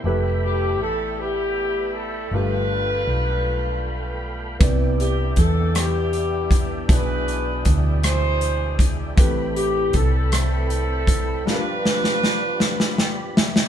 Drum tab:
HH |------------|------------|x-x-x-x-x-x-|x-x-x-x-x-x-|
SD |------------|------------|------r-----|------r-----|
BD |------------|------------|o---o-----o-|o---o-----o-|

HH |x-x-x-x-x-x-|------------|
SD |----r-r-----|o-ooo-ooo-oo|
BD |o---o-----o-|------------|